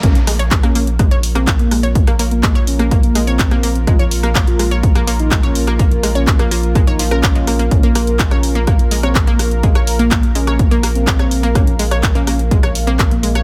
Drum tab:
HH |xxoxxxoxxxoxxxox|xxoxxxoxxxoxxxox|xxoxxxoxxxoxxxox|xxoxxxoxxxoxxxox|
CP |----x-------x---|----x-------x---|----x-------x---|----x-------x---|
SD |--r--r--r--r--r-|-r--r--r--r--r--|r--r--r--r--r--r|--r--r--r--r--r-|
BD |o---o---o---o---|o---o---o---o---|o---o---o---o---|o---o---o---o---|

HH |xxoxxxoxxxoxxxox|xxoxxxoxxxoxxxox|xxoxxxoxxxoxxxox|
CP |----x-------x---|----x-------x---|----x-------x---|
SD |--r--r--r--r--r-|-r--r--r--r--r--|r--r--r--r--r--r|
BD |o---o---o---o---|o---o---o---o---|o---o---o---o---|